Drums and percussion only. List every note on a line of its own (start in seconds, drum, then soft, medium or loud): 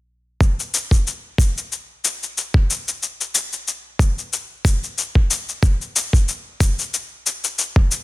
0.41 kick loud
0.41 cabasa soft
0.60 cabasa soft
0.74 cabasa medium
0.91 kick soft
0.91 cabasa soft
1.07 cabasa soft
1.38 kick medium
1.38 cabasa medium
1.58 cabasa soft
1.72 cabasa soft
2.05 cabasa medium
2.23 cabasa soft
2.37 cabasa soft
2.54 kick medium
2.70 cabasa medium
2.88 cabasa soft
3.03 cabasa soft
3.21 cabasa soft
3.35 cabasa medium
3.53 cabasa soft
3.68 cabasa soft
3.99 kick medium
3.99 cabasa medium
4.18 cabasa soft
4.33 cabasa soft
4.65 kick loud
4.65 cabasa medium
4.84 cabasa soft
4.98 cabasa soft
5.15 kick medium
5.31 cabasa medium
5.49 cabasa soft
5.63 kick loud
5.63 cabasa soft
5.81 cabasa soft
5.96 cabasa medium
6.13 kick medium
6.13 cabasa soft
6.28 cabasa soft
6.60 kick medium
6.60 cabasa medium
6.79 cabasa soft
6.94 cabasa soft
7.26 cabasa medium
7.44 cabasa soft
7.59 cabasa soft
7.76 kick loud
7.91 cabasa medium